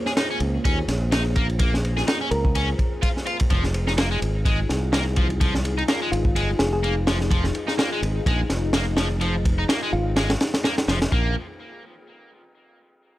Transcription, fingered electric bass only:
0.41 C#2
0.65 D#2
0.88 A#1
2.31 C#2
3.51 F1
4.22 G#1
4.70 C2
6.12 G#1
6.36 G1
6.60 F1
8.02 G#1
8.26 A#1
8.50 F1
9.93 G#1
10.88 F1
11.12 A#1

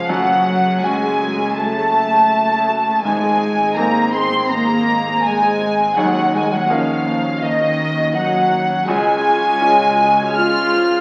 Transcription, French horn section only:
Already playing: F3
0.11 F#3
0.83 G#3
1.57 A3
3.03 G#3
3.78 A#3
4.14 C4
4.52 A#3
5.25 G#3
5.99 F#3
6.34 G#3
6.52 F#3
6.71 F3
7.42 D#3
8.15 F#3
8.88 G#3
10.36 F4

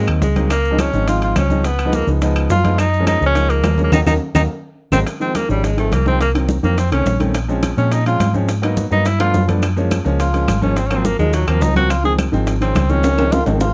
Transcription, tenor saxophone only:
0.23 G#3
0.51 A#3
0.81 C#4
1.09 F4
1.23 F4
1.38 C#4
1.66 B3
1.95 A#3
2.51 F4
2.79 D#4
3.08 D#4
3.26 C#4
3.50 A#3
3.84 A#3
3.93 D#4
4.07 D#4
4.35 D#4
4.93 C4
5.21 C4
5.36 A#3
5.51 G3
5.65 G#3
5.79 A3
5.93 A#3
6.07 C4
6.22 A#3
6.64 A#3
6.79 C4
6.92 C#4
7.78 C#4
7.93 D#4
8.07 F4
8.93 D#4
9.07 E4
9.20 F4
10.20 F4
10.62 C#4
10.77 C4
10.86 C#4
10.96 C4
11.05 A#3
11.19 G#3
11.34 F#3
11.48 A#3
11.62 D#4
11.77 F#4
11.91 F4
12.05 G#4
12.61 C4
12.90 C#4
13.33 F4
13.46 C#4
13.61 F4

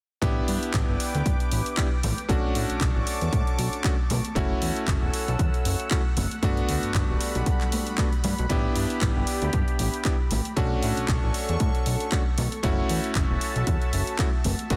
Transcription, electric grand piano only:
0.22 B3 D4 E4 G4
1.77 B3 D4 E4 G4
2.29 A3 C#4 D4 F#4
3.84 A3 C#4 D4 F#4
4.35 A3 C#4 E4 F#4
5.91 A3 C#4 E4 F#4
6.42 A3 B3 D4 F#4
7.98 A3 B3 D4 F#4
8.49 B3 D4 E4 G4
10.05 B3 D4 E4 G4
10.56 A3 C#4 D4 F#4
12.12 A3 C#4 D4 F#4
12.63 A3 C#4 E4 F#4
14.19 A3 C#4 E4 F#4
14.70 A3 B3 D4 F#4

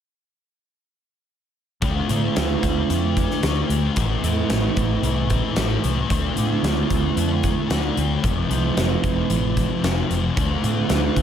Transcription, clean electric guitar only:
1.82 D3 A3 C4 F4
3.97 A2 E3 A3 C4 E4
6.10 D3 A3 C4 F4
8.23 F3 A3 C4 E4
10.36 D3 A3 C4 F4

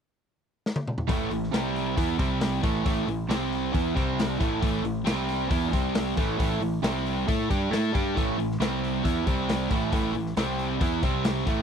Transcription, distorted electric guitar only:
1.08 A2 E3 A3
1.32 A2 E3
1.54 C3 G3 C4
1.96 E3 B3 E4
2.19 C3 G3 C4
2.62 A2 E3 A3
2.86 A2 E3 A3
3.08 A2 E3
3.29 C3 G3 C4
3.73 E3 B3 E4
3.95 C3 G3 C4
4.39 A2 E3 A3
4.61 A2 E3 A3
4.83 A2 E3
5.04 C3 G3 C4
5.48 E3 B3 E4
5.72 C3 G3 C4
6.17 A2 E3 A3
6.38 A2 E3 A3
6.61 A2 E3
6.83 C3 G3 C4
7.28 A3 E4 A4
7.50 G3 D4 G4
7.72 A3 E4 A4
7.94 G3 D4 G4
8.17 A2 E3 A3
8.38 A2 E3
8.60 C3 G3 C4
9.04 E3 B3 E4
9.26 C3 G3 C4
9.71 A2 E3 A3
9.92 A2 E3 A3
10.15 A2 E3
10.37 C3 G3 C4
10.80 E3 B3 E4
11.02 C3 G3 C4
11.46 A2 E3 A3

